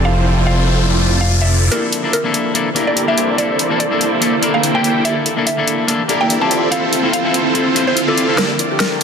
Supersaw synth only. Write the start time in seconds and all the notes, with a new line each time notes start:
0.05 C4 E4 F4 A4 C5
1.42 C4 E4 F4 A4 D5
1.72 A#3 E4 G4 A4 D5
2.76 A#3 E4 G4 A4 D5
2.87 A#3 E4 G4 A4 D5
3.18 A#3 E4 A4 C5 D5
3.38 E4 A4 C5
4.54 A#3 E4 A4 C5 G5
5.05 A#3 E4 G4 A4 D5
6.09 A#3 E4 G4 A4 D5
6.21 A#3 E4 G4 A4 D5
6.51 C4 E4 F4 A4 D5
6.72 C4 E4 F4 C5
7.87 C4 E4 F4 A4 F5
8.38 A#3 E4 G4 A4 D5